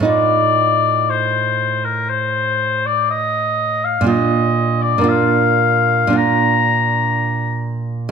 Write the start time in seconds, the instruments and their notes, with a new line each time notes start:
0.00 nylon-string guitar A2 D#4
0.05 nylon-string guitar F4, oboe D5
1.10 oboe C5
1.85 oboe A#4
2.10 oboe C5
2.86 oboe D5
3.10 oboe D#5
3.84 oboe F5
4.01 nylon-string guitar A#2 D4
4.07 nylon-string guitar F4, oboe D#5
4.82 oboe D5
4.98 nylon-string guitar A#2 D4
5.04 nylon-string guitar F4
5.09 oboe F5
6.07 nylon-string guitar A#2 D4
6.13 nylon-string guitar F4
6.17 oboe A#5